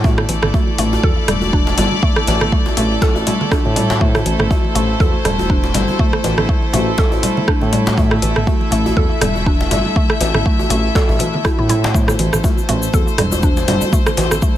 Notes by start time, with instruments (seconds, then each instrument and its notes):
Already playing: analog synth bass A2, string section A3 E4 A4
0.04 synth pluck A3, string section D5, kick, djembe tone, high conga
0.18 cross-stick, high conga
0.29 analog synth bass A1, synth pluck E3, open hi-hat, muted conga
0.42 analog synth bass A1, cross-stick, mid tom, high conga
0.54 synth pluck A3, kick, djembe tone
0.67 muted conga
0.78 analog synth bass A1, synth pluck A3, open hi-hat, low conga
0.93 djembe tone
1.03 analog synth bass E2, synth pluck A4, kick, muted conga, high conga
1.28 analog synth bass E1, synth pluck G3, cross-stick, mid tom, open hi-hat, high conga, low conga
1.42 muted conga, djembe tone
1.53 synth pluck D4, kick
1.67 djembe slap
1.78 analog synth bass G1, synth pluck G3, open hi-hat, djembe slap, high conga, djembe tone, low conga
1.92 muted conga
2.02 synth pluck A3, kick, high conga
2.16 cross-stick, high conga
2.27 analog synth bass A1, synth pluck E3, open hi-hat, muted conga, djembe slap, djembe tone
2.41 analog synth bass A1, cross-stick, mid tom, high conga
2.52 synth pluck A3, kick
2.66 muted conga, djembe tone
2.77 analog synth bass A1, synth pluck A3, open hi-hat, low conga
3.01 synth pluck A4, kick, muted conga, djembe slap
3.16 analog synth bass A1, djembe tone
3.27 synth pluck G3, open hi-hat, low conga
3.41 muted conga, high conga
3.51 synth pluck D4, kick, cross-stick, djembe tone
3.65 analog synth bass A2, high conga
3.76 synth pluck G3, open hi-hat, low conga
3.90 muted conga, djembe slap
4.01 synth pluck A3, string section C5, kick, high conga
4.15 cross-stick, djembe tone, high conga
4.25 analog synth bass A1, synth pluck E3, open hi-hat, muted conga
4.39 analog synth bass A1, cross-stick, mid tom, high conga
4.51 synth pluck A3, kick, djembe tone
4.64 muted conga
4.75 analog synth bass A1, synth pluck A3, open hi-hat, low conga
5.00 analog synth bass E2, synth pluck A4, kick, muted conga, djembe tone, high conga
5.25 analog synth bass E1, synth pluck G3, cross-stick, mid tom, open hi-hat, high conga, low conga
5.39 muted conga, djembe tone
5.50 synth pluck D4, kick
5.64 djembe slap
5.74 analog synth bass G1, synth pluck G3, open hi-hat, djembe slap, high conga, low conga
5.88 muted conga, djembe tone
5.99 synth pluck A3, kick, high conga
6.13 cross-stick, high conga
6.24 analog synth bass A1, synth pluck E3, open hi-hat, muted conga, djembe slap, djembe tone
6.38 analog synth bass A1, cross-stick, high conga
6.49 synth pluck A3, kick
6.62 muted conga
6.73 analog synth bass A1, synth pluck A3, open hi-hat, djembe tone, low conga
6.98 synth pluck A4, kick, djembe slap, muted conga
7.12 analog synth bass A1, djembe tone
7.23 synth pluck G3, open hi-hat, low conga
7.37 muted conga, high conga
7.48 synth pluck D4, kick, cross-stick
7.61 analog synth bass A2, djembe tone, high conga
7.73 synth pluck G3, open hi-hat, low conga
7.86 muted conga, djembe slap
7.97 synth pluck A3, string section E5, kick, high conga, djembe tone
8.11 cross-stick, high conga
8.22 analog synth bass A1, synth pluck E3, open hi-hat, muted conga
8.36 analog synth bass A1, cross-stick, mid tom, high conga
8.47 synth pluck A3, kick, djembe tone
8.61 muted conga
8.71 analog synth bass A1, synth pluck A3, open hi-hat, low conga
8.86 djembe tone
8.97 analog synth bass E2, synth pluck A4, kick, muted conga, high conga
9.21 analog synth bass E1, synth pluck G3, cross-stick, mid tom, open hi-hat, high conga, low conga
9.36 muted conga, djembe tone
9.46 synth pluck D4, kick
9.61 djembe slap
9.71 analog synth bass G1, synth pluck G3, open hi-hat, djembe slap, high conga, djembe tone, low conga
9.85 muted conga
9.96 synth pluck A3, kick, high conga
10.09 cross-stick, high conga
10.20 analog synth bass A1, synth pluck E3, open hi-hat, muted conga, djembe slap, djembe tone
10.34 analog synth bass A1, cross-stick, mid tom, high conga
10.46 synth pluck A3, kick
10.59 muted conga, djembe tone
10.70 analog synth bass A1, synth pluck A3, open hi-hat, low conga
10.95 synth pluck A4, kick, muted conga, djembe slap
11.09 analog synth bass A1, djembe tone, low conga
11.19 synth pluck E3, open hi-hat, low conga
11.34 muted conga, high conga
11.45 synth pluck E4, kick, cross-stick, djembe tone
11.59 analog synth bass A2, synth pluck E4, high conga
11.69 synth pluck E4, open hi-hat, low conga
11.84 muted conga, djembe slap
11.94 synth pluck A3, string section C5, kick, high conga, cabasa
12.08 cross-stick, high conga, djembe tone, cabasa
12.19 analog synth bass A1, synth pluck E3, open hi-hat, muted conga
12.33 analog synth bass A1, cross-stick, mid tom, high conga, cabasa
12.44 synth pluck A3, kick, djembe tone, cabasa
12.57 muted conga, cabasa
12.69 analog synth bass A1, synth pluck A3, open hi-hat, low conga
12.83 cabasa
12.93 analog synth bass E2, synth pluck A4, kick, muted conga, high conga, djembe tone, cabasa
13.08 cabasa
13.18 analog synth bass E1, synth pluck G3, cross-stick, mid tom, open hi-hat, high conga, low conga
13.32 muted conga, djembe tone, cabasa
13.43 synth pluck D4, kick, cabasa
13.57 djembe slap, cabasa
13.68 analog synth bass G1, synth pluck G3, open hi-hat, djembe slap, high conga, low conga
13.81 muted conga, djembe tone, cabasa
13.92 synth pluck A3, kick, high conga, cabasa
14.06 cross-stick, high conga, cabasa
14.17 analog synth bass A1, synth pluck E3, open hi-hat, muted conga, djembe slap, djembe tone
14.31 analog synth bass A1, cross-stick, high conga, cabasa
14.42 synth pluck A3, kick, cabasa